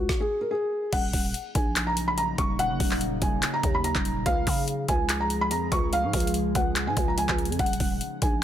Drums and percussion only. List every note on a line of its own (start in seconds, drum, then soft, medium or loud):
0.09 kick loud
0.09 snare medium
0.93 kick loud
0.93 closed hi-hat medium
0.93 crash loud
1.13 kick medium
1.13 open hi-hat medium
1.34 closed hi-hat medium
1.55 kick loud
1.55 closed hi-hat medium
1.76 clap loud
1.76 closed hi-hat medium
1.97 closed hi-hat medium
2.18 closed hi-hat medium
2.38 kick loud
2.38 closed hi-hat medium
2.59 closed hi-hat medium
2.80 kick medium
2.80 open hi-hat medium
2.91 clap medium
3.01 closed hi-hat medium
3.22 kick loud
3.22 closed hi-hat medium
3.43 clap loud
3.43 closed hi-hat medium
3.63 kick loud
3.63 closed hi-hat medium
3.84 closed hi-hat medium
3.95 kick medium
3.95 clap medium
4.05 closed hi-hat medium
4.26 kick loud
4.26 closed hi-hat medium
4.47 kick medium
4.47 open hi-hat medium
4.68 closed hi-hat medium
4.88 kick medium
4.88 closed hi-hat medium
5.09 clap loud
5.09 closed hi-hat medium
5.30 closed hi-hat medium
5.51 closed hi-hat medium
5.72 kick loud
5.72 closed hi-hat medium
5.93 closed hi-hat medium
6.13 kick medium
6.13 closed hi-hat medium
6.13 open hi-hat medium
6.20 closed hi-hat medium
6.27 closed hi-hat medium
6.34 closed hi-hat medium
6.55 kick loud
6.55 closed hi-hat medium
6.76 clap loud
6.76 closed hi-hat medium
6.97 kick loud
6.97 closed hi-hat medium
7.18 closed hi-hat medium
7.29 kick medium
7.29 clap medium
7.38 closed hi-hat soft
7.45 closed hi-hat soft
7.52 closed hi-hat medium
7.59 kick loud
7.59 closed hi-hat medium
7.66 closed hi-hat medium
7.73 closed hi-hat medium
7.80 kick medium
7.80 open hi-hat medium
8.01 closed hi-hat medium
8.22 kick loud
8.22 closed hi-hat medium